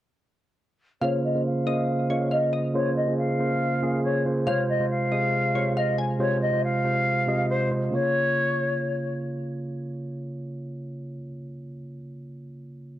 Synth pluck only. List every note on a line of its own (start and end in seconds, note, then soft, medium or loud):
1.01 1.63 F5 medium
1.67 2.07 D#5 medium
2.10 2.30 C#5 medium
2.31 2.52 F5 medium
2.53 2.73 D#5 medium
4.47 5.08 F5 loud
5.12 5.52 D#5 medium
5.55 5.76 C#5 medium
5.77 5.97 F5 loud
5.98 6.19 G#5 medium